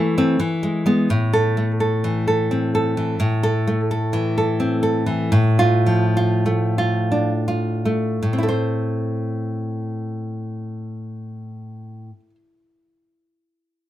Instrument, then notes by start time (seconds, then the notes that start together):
nylon-string guitar
Already playing: E3 A3
0.18 A3 C4
0.40 E3
0.63 G#3
0.86 G#3 B3
1.10 A2
1.33 A4
1.57 A3
1.80 A4
2.04 E3
2.28 A4
2.51 C4
2.75 A4
2.97 E3
3.20 A2
3.43 A4
3.67 A3
3.91 A4
4.13 E3
4.38 A4
4.60 C4
4.83 A4
5.06 E3
5.32 A2
5.59 F4
5.86 F3
6.17 F4
6.46 A3
6.78 F4
7.12 D4
7.48 F4
7.85 A3
8.23 A2
8.33 C4
8.38 E4
8.43 A4
8.48 C5